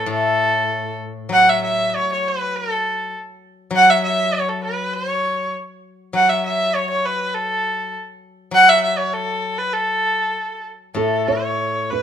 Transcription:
0.06 guzheng A2
0.11 erhu A4
1.29 guzheng F#3
1.33 erhu F#5
1.50 erhu E5
1.64 erhu E5
1.90 erhu E5
1.95 erhu C#5
2.13 erhu C#5
2.28 erhu B4
2.56 erhu A4
3.71 guzheng F#3
3.76 erhu F#5
3.90 erhu E5
4.04 erhu E5
4.34 erhu C#5
4.49 erhu A4
4.64 erhu B4
4.94 erhu C#5
6.13 guzheng F#3, erhu F#5
6.29 erhu E5
6.46 erhu E5
6.75 erhu C#5
6.90 erhu C#5
7.06 erhu B4
7.35 erhu A4
8.51 guzheng F#3, erhu F#5
8.69 erhu E5
8.84 erhu E5
8.98 erhu C#5
9.13 erhu A4
9.58 erhu B4
9.73 erhu A4
10.94 guzheng A2, erhu A4, felt piano A4
11.28 erhu C#5, felt piano C#5
11.90 erhu B4, felt piano B4

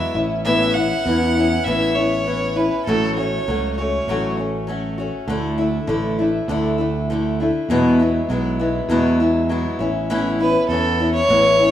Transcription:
Already playing: steel-string acoustic guitar F#3 G#3 B3 E4, fiddle E5
0.15 fingered electric bass A1, steel-string acoustic guitar B3 C#4 E4
0.45 steel-string acoustic guitar A2 E3 B3 C#4 E4, fiddle E5
0.74 steel-string acoustic guitar E4, fiddle F#5
0.79 steel-string acoustic guitar B3 C#4
1.05 fingered electric bass E2, steel-string acoustic guitar E3 B3 C#4 E4
1.37 steel-string acoustic guitar B3 C#4 E4
1.64 fingered electric bass A1, steel-string acoustic guitar A2 E3 B3 E4, fiddle E5
1.68 steel-string acoustic guitar C#4
1.95 steel-string acoustic guitar B3 C#4 E4, fiddle C#5
2.26 steel-string acoustic guitar E3 B3 C#4 E4
2.56 steel-string acoustic guitar B3 C#4 E4, fiddle B4
2.85 fingered electric bass A1, steel-string acoustic guitar A2 F#3 A3 C#4 F#4, fiddle A4
3.15 steel-string acoustic guitar C#4 F#4, fiddle C#5
3.20 steel-string acoustic guitar A3
3.48 fingered electric bass C#2, steel-string acoustic guitar F#3 A3 C#4 F#4
3.76 steel-string acoustic guitar C#4 F#4, fiddle C#5
3.81 steel-string acoustic guitar A3
4.07 fingered electric bass A1, steel-string acoustic guitar A2 F#3 A3 C#4 F#4
4.37 steel-string acoustic guitar A3 C#4 F#4
4.67 steel-string acoustic guitar F#3 A3 C#4 F#4
4.98 steel-string acoustic guitar A3 C#4 F#4
5.27 fingered electric bass D2, steel-string acoustic guitar D3 A3 D4 E4
5.58 steel-string acoustic guitar A3 D4 E4
5.87 fingered electric bass A1, steel-string acoustic guitar D3 A3 D4 E4
6.19 steel-string acoustic guitar A3 D4 E4
6.48 fingered electric bass D2, steel-string acoustic guitar D3 A3 D4 E4
6.78 steel-string acoustic guitar A3 D4 E4
7.10 steel-string acoustic guitar D3 A3 D4 E4
7.40 steel-string acoustic guitar A3 D4 E4
7.69 fingered electric bass E2, steel-string acoustic guitar E2 B2 F#3 G#3 B3 E4
7.99 steel-string acoustic guitar F#3 G#3 B3 E4
8.29 fingered electric bass B1, steel-string acoustic guitar F#3 G#3 B3 E4
8.59 steel-string acoustic guitar F#3 G#3 B3 E4
8.89 fingered electric bass E2, steel-string acoustic guitar E2 B2 F#3 G#3 B3 E4
9.20 steel-string acoustic guitar F#3 G#3 B3 E4
9.49 steel-string acoustic guitar F#3 G#3 B3 E4
9.79 fingered electric bass A1, steel-string acoustic guitar B3 C#4 E4
10.10 steel-string acoustic guitar A2 E3 B3 C#4 E4
10.40 steel-string acoustic guitar B3 C#4 E4, fiddle B4
10.69 fingered electric bass E2, steel-string acoustic guitar E3 B3 C#4, fiddle A4
10.74 steel-string acoustic guitar E4
11.00 steel-string acoustic guitar B3 C#4 E4
11.13 fiddle C#5
11.28 fingered electric bass A1, steel-string acoustic guitar A2 E3 B3 C#4 E4
11.59 steel-string acoustic guitar B3 C#4 E4

